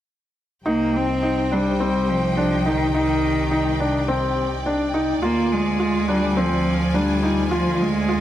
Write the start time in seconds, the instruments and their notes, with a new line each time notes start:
0.66 double bass section C2, cello A#3, string section D#4 G4 C5 G5, felt piano D#4
0.95 cello C4
1.23 felt piano D#4
1.51 cello G3, felt piano D4
1.80 felt piano C4
2.09 cello F3
2.37 felt piano D4
2.66 cello D#3, felt piano D#4
2.94 cello D#3, felt piano D#4, string section D5
3.51 felt piano D#4
3.80 felt piano D4
4.08 felt piano C4
4.66 felt piano D4
4.94 felt piano D#4
5.22 double bass section D2, cello A#3, felt piano F4, string section F4 G#5
5.52 cello G#3
5.80 felt piano F4
6.08 cello G3, felt piano D4
6.37 cello F3, felt piano C4
6.94 cello G3, felt piano D4
7.23 felt piano D#4
7.51 cello F3, felt piano F4
7.81 cello G#3
8.09 felt piano F4